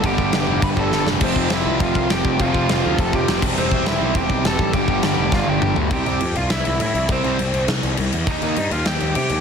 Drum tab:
CC |x-x-x---|x-x-x-x-|x-x-x-xx|x-x-x-x-|
SD |--o---oo|--o---o-|--o---o-|--o---o-|
T2 |--------|--------|--------|--------|
FT |--------|--------|--------|--------|
BD |oo--oo--|oo--oo-o|oo--oo-o|-o--oo-o|

CC |x-x-----|xxxxxxxx|xxxxxxxx|xxxxxxxx|
SD |--o-o---|----o---|----o---|----o---|
T2 |------o-|--------|--------|--------|
FT |-------o|--------|--------|--------|
BD |oo--o---|o-------|o-------|o-------|